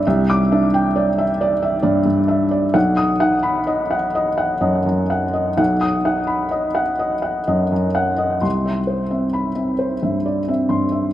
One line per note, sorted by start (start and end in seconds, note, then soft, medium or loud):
0.00 0.19 D5 medium
0.07 2.72 C2 medium
0.07 0.41 E5 medium
0.30 0.64 D6 medium
0.52 1.22 D4 medium
0.52 0.86 E5 medium
0.74 1.09 G5 medium
0.96 1.31 D5 medium
1.18 1.53 E5 medium
1.41 1.76 D5 medium
1.62 1.98 E5 medium
1.83 2.04 G2 medium
1.83 2.20 D5 medium
2.06 2.43 G2 medium
2.28 2.65 E5 medium
2.51 2.75 D5 medium
2.74 5.54 B1 medium
2.74 3.11 F#5 medium
2.97 3.34 D#6 medium
3.20 3.95 D#4 medium
3.20 3.58 F#5 medium
3.43 3.81 B5 medium
3.67 4.05 D#5 medium
3.91 4.29 F#5 medium
4.15 4.53 D#5 medium
4.38 4.77 F#5 medium
4.61 4.84 F#2 medium
4.61 5.00 D#5 medium
4.86 5.25 F#2 medium
5.10 5.49 F#5 medium
5.33 5.72 D#5 medium
5.57 8.40 B1 medium
5.57 5.96 F#5 medium
5.81 6.20 D#6 medium
6.05 6.81 D#4 soft
6.05 6.44 F#5 medium
6.27 6.66 B5 soft
6.51 6.91 D#5 medium
6.75 7.14 F#5 medium
6.99 7.39 D#5 medium
7.22 7.62 F#5 soft
7.47 7.70 F#2 soft
7.47 7.87 D#5 medium
7.72 8.11 F#2 medium
7.95 8.34 F#5 medium
8.18 8.43 D#5 medium
8.41 11.11 C2 soft
8.41 8.80 C6 soft
8.65 9.03 E5 soft
8.87 9.26 C5 soft
9.11 9.49 C4 soft
9.11 9.49 E5 soft
9.33 9.72 B5 soft
9.56 9.94 C4 soft
9.56 9.94 E5 soft
9.79 10.17 C5 soft
10.03 10.40 G2 soft
10.03 10.40 E5 soft
10.26 10.49 D5 soft
10.48 10.84 C4 soft
10.48 10.84 E5 soft
10.69 11.06 G2 soft
10.69 11.06 C6 soft
10.92 11.13 E5 soft